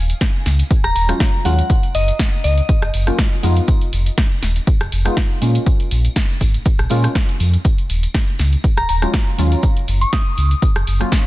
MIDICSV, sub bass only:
0, 0, Header, 1, 2, 480
1, 0, Start_track
1, 0, Key_signature, -6, "minor"
1, 0, Tempo, 495868
1, 1645, Time_signature, 4, 2, 24, 8
1, 10907, End_track
2, 0, Start_track
2, 0, Title_t, "Sub bass"
2, 0, Program_c, 0, 38
2, 0, Note_on_c, 0, 27, 102
2, 126, Note_off_c, 0, 27, 0
2, 444, Note_on_c, 0, 37, 106
2, 606, Note_off_c, 0, 37, 0
2, 813, Note_on_c, 0, 27, 82
2, 886, Note_off_c, 0, 27, 0
2, 924, Note_on_c, 0, 27, 102
2, 1086, Note_off_c, 0, 27, 0
2, 1404, Note_on_c, 0, 39, 102
2, 1567, Note_off_c, 0, 39, 0
2, 1884, Note_on_c, 0, 30, 100
2, 2047, Note_off_c, 0, 30, 0
2, 2364, Note_on_c, 0, 37, 104
2, 2527, Note_off_c, 0, 37, 0
2, 2732, Note_on_c, 0, 30, 88
2, 2805, Note_off_c, 0, 30, 0
2, 2844, Note_on_c, 0, 30, 101
2, 3007, Note_off_c, 0, 30, 0
2, 3324, Note_on_c, 0, 41, 99
2, 3487, Note_off_c, 0, 41, 0
2, 3804, Note_on_c, 0, 29, 100
2, 3967, Note_off_c, 0, 29, 0
2, 4284, Note_on_c, 0, 27, 108
2, 4447, Note_off_c, 0, 27, 0
2, 4652, Note_on_c, 0, 29, 87
2, 4725, Note_off_c, 0, 29, 0
2, 4764, Note_on_c, 0, 29, 100
2, 4926, Note_off_c, 0, 29, 0
2, 5244, Note_on_c, 0, 46, 93
2, 5406, Note_off_c, 0, 46, 0
2, 5724, Note_on_c, 0, 34, 97
2, 5887, Note_off_c, 0, 34, 0
2, 6204, Note_on_c, 0, 32, 110
2, 6367, Note_off_c, 0, 32, 0
2, 6573, Note_on_c, 0, 34, 85
2, 6645, Note_off_c, 0, 34, 0
2, 6684, Note_on_c, 0, 46, 88
2, 6847, Note_off_c, 0, 46, 0
2, 7163, Note_on_c, 0, 41, 96
2, 7326, Note_off_c, 0, 41, 0
2, 7644, Note_on_c, 0, 27, 102
2, 7807, Note_off_c, 0, 27, 0
2, 8124, Note_on_c, 0, 37, 107
2, 8286, Note_off_c, 0, 37, 0
2, 8492, Note_on_c, 0, 27, 84
2, 8565, Note_off_c, 0, 27, 0
2, 8603, Note_on_c, 0, 27, 101
2, 8766, Note_off_c, 0, 27, 0
2, 9084, Note_on_c, 0, 39, 95
2, 9247, Note_off_c, 0, 39, 0
2, 9564, Note_on_c, 0, 30, 101
2, 9726, Note_off_c, 0, 30, 0
2, 10044, Note_on_c, 0, 37, 107
2, 10207, Note_off_c, 0, 37, 0
2, 10412, Note_on_c, 0, 30, 85
2, 10485, Note_off_c, 0, 30, 0
2, 10524, Note_on_c, 0, 30, 97
2, 10687, Note_off_c, 0, 30, 0
2, 10907, End_track
0, 0, End_of_file